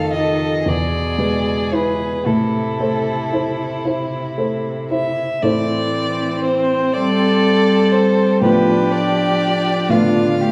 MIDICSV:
0, 0, Header, 1, 6, 480
1, 0, Start_track
1, 0, Key_signature, 0, "minor"
1, 0, Tempo, 1060071
1, 1026, Time_signature, 6, 3, 24, 8
1, 2464, Tempo, 1003344
1, 3424, Tempo, 981997
1, 4924, End_track
2, 0, Start_track
2, 0, Title_t, "Violin"
2, 0, Program_c, 0, 40
2, 61, Note_on_c, 0, 75, 67
2, 309, Note_on_c, 0, 74, 68
2, 316, Note_off_c, 0, 75, 0
2, 788, Note_on_c, 0, 71, 59
2, 795, Note_off_c, 0, 74, 0
2, 1024, Note_on_c, 0, 69, 54
2, 1031, Note_off_c, 0, 71, 0
2, 1742, Note_off_c, 0, 69, 0
2, 2223, Note_on_c, 0, 76, 66
2, 2455, Note_on_c, 0, 74, 77
2, 2462, Note_off_c, 0, 76, 0
2, 2940, Note_off_c, 0, 74, 0
2, 2942, Note_on_c, 0, 72, 72
2, 3175, Note_on_c, 0, 74, 76
2, 3183, Note_off_c, 0, 72, 0
2, 3654, Note_on_c, 0, 72, 69
2, 3662, Note_off_c, 0, 74, 0
2, 3901, Note_off_c, 0, 72, 0
2, 3908, Note_on_c, 0, 71, 70
2, 4141, Note_on_c, 0, 74, 75
2, 4148, Note_off_c, 0, 71, 0
2, 4624, Note_on_c, 0, 77, 68
2, 4631, Note_off_c, 0, 74, 0
2, 4924, Note_off_c, 0, 77, 0
2, 4924, End_track
3, 0, Start_track
3, 0, Title_t, "Violin"
3, 0, Program_c, 1, 40
3, 0, Note_on_c, 1, 69, 47
3, 280, Note_off_c, 1, 69, 0
3, 300, Note_on_c, 1, 68, 47
3, 1025, Note_on_c, 1, 64, 40
3, 1032, Note_off_c, 1, 68, 0
3, 2369, Note_off_c, 1, 64, 0
3, 3187, Note_on_c, 1, 69, 66
3, 3887, Note_off_c, 1, 69, 0
3, 3911, Note_on_c, 1, 67, 65
3, 4631, Note_on_c, 1, 65, 57
3, 4638, Note_off_c, 1, 67, 0
3, 4873, Note_on_c, 1, 67, 54
3, 4880, Note_off_c, 1, 65, 0
3, 4924, Note_off_c, 1, 67, 0
3, 4924, End_track
4, 0, Start_track
4, 0, Title_t, "Grand piano"
4, 0, Program_c, 2, 0
4, 0, Control_c, 2, 64, 127
4, 0, Note_on_c, 2, 41, 50
4, 0, Note_on_c, 2, 57, 37
4, 0, Note_on_c, 2, 75, 39
4, 46, Note_off_c, 2, 57, 0
4, 46, Note_off_c, 2, 75, 0
4, 60, Note_on_c, 2, 63, 34
4, 63, Note_on_c, 2, 75, 37
4, 279, Note_off_c, 2, 63, 0
4, 281, Note_off_c, 2, 75, 0
4, 284, Note_off_c, 2, 41, 0
4, 298, Note_on_c, 2, 40, 43
4, 308, Control_c, 2, 64, 0
4, 394, Control_c, 2, 64, 127
4, 536, Note_on_c, 2, 56, 34
4, 537, Note_on_c, 2, 71, 38
4, 762, Note_off_c, 2, 56, 0
4, 763, Note_off_c, 2, 71, 0
4, 781, Note_on_c, 2, 64, 32
4, 783, Note_on_c, 2, 71, 35
4, 1007, Note_off_c, 2, 40, 0
4, 1007, Note_off_c, 2, 64, 0
4, 1008, Note_off_c, 2, 71, 0
4, 1024, Note_on_c, 2, 45, 40
4, 1033, Control_c, 2, 64, 0
4, 1105, Control_c, 2, 64, 127
4, 1267, Note_on_c, 2, 57, 31
4, 1271, Note_on_c, 2, 72, 35
4, 1487, Note_off_c, 2, 57, 0
4, 1489, Note_off_c, 2, 72, 0
4, 1506, Note_on_c, 2, 64, 30
4, 1509, Note_on_c, 2, 72, 34
4, 1725, Note_off_c, 2, 64, 0
4, 1726, Note_off_c, 2, 72, 0
4, 1744, Note_on_c, 2, 64, 29
4, 1745, Note_on_c, 2, 72, 33
4, 1963, Note_off_c, 2, 64, 0
4, 1964, Note_off_c, 2, 72, 0
4, 1981, Note_on_c, 2, 57, 32
4, 1983, Note_on_c, 2, 72, 34
4, 2205, Note_off_c, 2, 57, 0
4, 2206, Note_off_c, 2, 72, 0
4, 2222, Note_on_c, 2, 64, 31
4, 2223, Note_on_c, 2, 72, 32
4, 2445, Note_off_c, 2, 45, 0
4, 2446, Note_off_c, 2, 64, 0
4, 2446, Note_off_c, 2, 72, 0
4, 2458, Note_on_c, 2, 45, 50
4, 2460, Note_on_c, 2, 57, 39
4, 2463, Note_on_c, 2, 64, 40
4, 2463, Note_on_c, 2, 72, 39
4, 2473, Control_c, 2, 64, 0
4, 2565, Control_c, 2, 64, 127
4, 3884, Note_off_c, 2, 45, 0
4, 3885, Note_off_c, 2, 57, 0
4, 3887, Note_off_c, 2, 64, 0
4, 3887, Note_off_c, 2, 72, 0
4, 3895, Note_on_c, 2, 45, 48
4, 3899, Note_on_c, 2, 65, 40
4, 3901, Note_on_c, 2, 59, 38
4, 3903, Note_on_c, 2, 71, 37
4, 3916, Control_c, 2, 64, 0
4, 4004, Control_c, 2, 64, 127
4, 4601, Note_off_c, 2, 45, 0
4, 4603, Note_off_c, 2, 65, 0
4, 4604, Note_off_c, 2, 59, 0
4, 4605, Note_off_c, 2, 71, 0
4, 4619, Note_on_c, 2, 45, 46
4, 4619, Note_on_c, 2, 59, 35
4, 4620, Note_on_c, 2, 65, 38
4, 4623, Note_on_c, 2, 71, 37
4, 4924, Note_off_c, 2, 45, 0
4, 4924, Note_off_c, 2, 59, 0
4, 4924, Note_off_c, 2, 65, 0
4, 4924, Note_off_c, 2, 71, 0
4, 4924, End_track
5, 0, Start_track
5, 0, Title_t, "Viola"
5, 0, Program_c, 3, 41
5, 2458, Note_on_c, 3, 60, 59
5, 3905, Note_on_c, 3, 62, 56
5, 3913, Note_off_c, 3, 60, 0
5, 4624, Note_off_c, 3, 62, 0
5, 4627, Note_on_c, 3, 62, 56
5, 4861, Note_off_c, 3, 62, 0
5, 4866, Note_on_c, 3, 57, 60
5, 4924, Note_off_c, 3, 57, 0
5, 4924, End_track
6, 0, Start_track
6, 0, Title_t, "Cello"
6, 0, Program_c, 4, 42
6, 0, Note_on_c, 4, 51, 49
6, 294, Note_on_c, 4, 47, 47
6, 301, Note_off_c, 4, 51, 0
6, 1017, Note_off_c, 4, 47, 0
6, 1020, Note_on_c, 4, 48, 41
6, 2348, Note_off_c, 4, 48, 0
6, 2469, Note_on_c, 4, 52, 50
6, 3171, Note_off_c, 4, 52, 0
6, 3194, Note_on_c, 4, 55, 56
6, 3907, Note_on_c, 4, 53, 49
6, 3914, Note_off_c, 4, 55, 0
6, 4633, Note_on_c, 4, 50, 52
6, 4640, Note_off_c, 4, 53, 0
6, 4924, Note_off_c, 4, 50, 0
6, 4924, End_track
0, 0, End_of_file